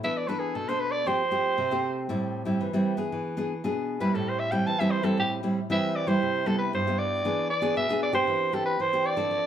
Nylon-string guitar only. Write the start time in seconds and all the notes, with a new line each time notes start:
0.03 E3 B3 D4 A4
0.28 B3 D4 A4
0.55 B2
0.69 B3 D4 A4
1.06 F3 A3 C4 G4
1.31 A3 C4 G4
1.58 C3
1.71 A3 C4 G4
2.09 A2 G3 C4 E4
2.45 G3 C4 E4
2.61 E3
2.73 G3 C4 E4
2.97 B3 D4 G#4
3.12 E3
3.37 B3 D4 G#4
3.64 B2 B3 D4 G#4
4.00 G3 C4 E4
4.15 A2
4.52 G3 C4 E4
4.67 E3
4.80 G3 C4 E4
5.03 G3 C4 E4
5.18 A2
5.43 G3 C4 E4
5.70 E3 G3 C4 E4
6.07 G3 E4
6.22 C3
6.46 G3 B3 E4
6.73 G2
6.87 G3 B3 E4
7.25 E3 B3 D4 G#4
7.61 B3 D4 G#4
7.76 B2
7.89 B3 D4 G#4
8.12 C4 D4 G4
8.27 E3
8.52 C4 D4 G4
8.80 E3
8.93 C4 D4 G4
9.16 C4 D4 A4
9.31 F3